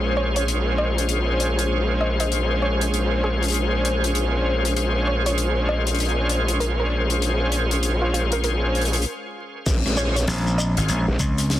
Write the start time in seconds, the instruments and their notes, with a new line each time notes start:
Already playing: wobble bass A#1, analog synth pad G#3 C5, tonewheel organ C#4 F4 G#4 C5
0.17 synth pluck C#5
0.36 synth pluck C#5, closed hi-hat
0.48 closed hi-hat
0.78 synth pluck D#5
0.98 closed hi-hat
1.09 closed hi-hat
1.40 closed hi-hat
1.59 closed hi-hat
2.01 synth pluck D#5
2.20 synth pluck D#5, closed hi-hat
2.32 closed hi-hat
2.62 synth pluck C#5
2.81 closed hi-hat
2.94 closed hi-hat
3.24 synth pluck G#4
3.43 closed hi-hat
3.44 closed hi-hat
3.48 closed hi-hat
3.50 closed hi-hat
3.52 closed hi-hat
3.54 closed hi-hat
3.85 closed hi-hat
4.04 closed hi-hat
4.15 closed hi-hat
4.65 closed hi-hat
4.76 tonewheel organ C#4 F4 G#4 C5, closed hi-hat
5.07 synth pluck C#5
5.26 synth pluck C#5, closed hi-hat
5.38 closed hi-hat
5.69 synth pluck D#5
5.87 closed hi-hat
5.95 closed hi-hat
5.99 closed hi-hat
6.00 closed hi-hat
6.05 closed hi-hat
6.09 closed hi-hat
6.29 closed hi-hat
6.48 closed hi-hat
6.60 synth pluck A#4, closed hi-hat
6.80 synth pluck A#4
7.10 closed hi-hat
7.22 closed hi-hat
7.52 closed hi-hat
7.71 closed hi-hat
7.83 closed hi-hat
8.02 synth pluck F4
8.14 synth pluck F4, closed hi-hat
8.32 synth pluck A#4, closed hi-hat
8.44 synth pluck A#4, closed hi-hat
8.75 closed hi-hat
8.81 closed hi-hat
8.85 closed hi-hat
8.93 closed hi-hat
8.95 closed hi-hat
9.02 closed hi-hat
9.66 wobble bass A#1, analog synth pad G#3 C4 C#4, kick, closed hi-hat, crash, shekere
9.86 wobble bass A#1, cross-stick
9.97 tonewheel organ C#4 F4 G#4 C5, synth pluck C#5, shekere
10.16 synth pluck C#5, closed hi-hat, shekere
10.28 slap bass A#1, snare, closed hi-hat, shekere
10.47 shekere
10.58 synth pluck D#5, shekere
10.77 slap bass G#1, tonewheel organ C#4 F4 G#4 C5, closed hi-hat, shekere
10.88 slap bass A#1, closed hi-hat, shekere
11.08 wobble bass A#1
11.19 slap bass C#2, kick, closed hi-hat, shekere
11.38 cross-stick, closed hi-hat, shekere
11.50 snare, closed hi-hat, shekere